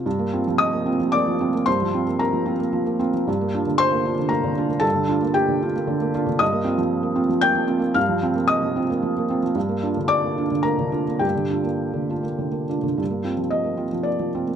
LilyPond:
<<
  \new Staff \with { instrumentName = "Felt piano" } { \time 3/4 \key f \mixolydian \tempo 4 = 112 r4 <ees'' ees'''>4 <d'' d'''>4 | <c'' c'''>4 <bes' bes''>4. r8 | r4 <c'' c'''>4 <bes' bes''>4 | <a' a''>4 <g' g''>4. r8 |
<ees'' ees'''>2 <g'' g'''>4 | <f'' f'''>4 <ees'' ees'''>2 | r4 <d'' d'''>4 <bes' bes''>4 | <g' g''>2~ <g' g''>8 r8 |
r4 ees''4 d''4 | }
  \new Staff \with { instrumentName = "Felt piano" } { \time 3/4 \key f \mixolydian g,16 bes16 <c' f'>16 f8 bes16 <c' f'>16 f16 bes16 f16 <c' f'>16 bes16 | g,16 f16 <c' f'>16 bes8 f16 <c' f'>16 bes16 f16 bes16 <c' f'>16 f16 | g,16 bes16 <d' f'>16 d8 bes16 <d' f'>16 d16 bes16 d16 <d' f'>16 bes16 | g,16 d16 <d' f'>16 bes8 d16 <d' f'>16 bes16 d16 bes16 <d' f'>16 d16 |
g,16 bes16 <c' f'>16 f8 bes16 <c' f'>16 f16 bes16 f16 <c' f'>16 bes16 | g,16 f16 <c' f'>16 bes8 f16 <c' f'>16 bes16 f16 bes16 <c' f'>16 f16 | g,16 bes16 <d' f'>16 d8 bes16 <d' f'>16 d16 bes16 d16 <d' f'>16 bes16 | g,16 d16 <d' f'>16 bes8 d16 <d' f'>16 bes16 d16 bes16 <d' f'>16 d16 |
g,16 bes16 <c' f'>16 f8 bes16 <c' f'>16 f16 bes16 f16 <c' f'>16 bes16 | }
>>